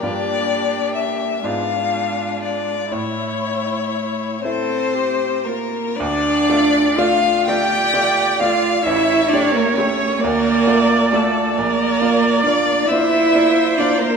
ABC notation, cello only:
X:1
M:6/8
L:1/16
Q:3/8=43
K:Dm
V:1 name="Cello"
B,6 ^G,6 | A,6 C4 B,2 | D4 F2 G4 F2 | E2 D B, ^C2 B,4 A,2 |
B,4 D2 E4 D B, |]